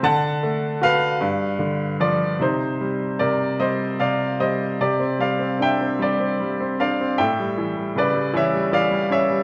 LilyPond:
<<
  \new Staff \with { instrumentName = "Upright piano" } { \time 6/8 \key c \minor \tempo 4. = 51 <fis'' a''>4 <b' f''>4. d''8 | <ees' c''>4 <bes' d''>8 <c'' ees''>8 <d'' f''>8 <c'' ees''>8 | \key c \major <g' d''>8 <d'' f''>8 <e'' g''>8 <g' d''>4 <d'' f''>8 | <e'' g''>4 <b' d''>8 <cis'' e''>8 <d'' f''>8 <cis'' e''>8 | }
  \new Staff \with { instrumentName = "Upright piano" } { \clef bass \time 6/8 \key c \minor d8 a8 fis'8 g,8 d8 f8 | c8 g8 c8 g8 c8 g8 | \key c \major c16 c'16 g16 c'16 d'16 c'16 g16 c'16 g16 c'16 d'16 c'16 | a,16 g16 e16 g16 cis16 g16 e16 g16 e16 g16 cis'16 g16 | }
>>